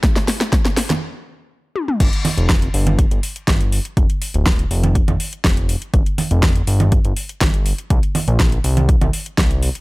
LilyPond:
<<
  \new Staff \with { instrumentName = "Analog synth bass" } { \clef bass \time 4/4 \key f \mixolydian \tempo 4 = 122 r1 | g,,16 r8 f,,8. g,,8. g,,16 r8 g,,8. r16 | f,,16 r8 d,,8. f,,8. f,,16 r8 f,,8. r16 | g,,16 r8 f,,8. g,,8. g,,16 r8 g,,8. r16 |
c,16 r8 bes,,8. c,8. c,16 r8 c,8. r16 | }
  \new DrumStaff \with { instrumentName = "Drums" } \drummode { \time 4/4 <hh bd sn>16 <hh sn>16 <hho sn>16 <hh sn>16 <hh bd sn>16 <hh sn>16 <hho sn>16 <cgl hh sn>16 r4 r8 tommh16 toml16 | <cymc hh bd>16 hh16 <cgl hho>16 hh16 <hh bd sn>16 hh16 hho16 <cgl hh>16 <hh bd>16 hh16 hho16 hh16 <cgl hh bd sn>16 hh16 hho16 hh16 | <hh bd>16 hh16 hho16 hh16 <hh bd sn>16 hh16 hho16 <cgl hh>16 <hh bd>16 <cgl hh>16 hho16 hh16 <hh bd sn>16 hh16 hho16 hh16 | <hh bd>16 hh16 <cgl hho>16 hh16 <hh bd sn>16 hh16 hho16 <cgl hh>16 <hh bd>16 hh16 hho16 hh16 <cgl hh bd sn>16 hh16 hho16 hh16 |
<hh bd>16 hh16 <cgl hho>16 hh16 <hh bd sn>16 hh16 hho16 <cgl hh>16 <hh bd>16 <cgl hh>16 hho16 hh16 <hh bd sn>16 hh16 hho16 hh16 | }
>>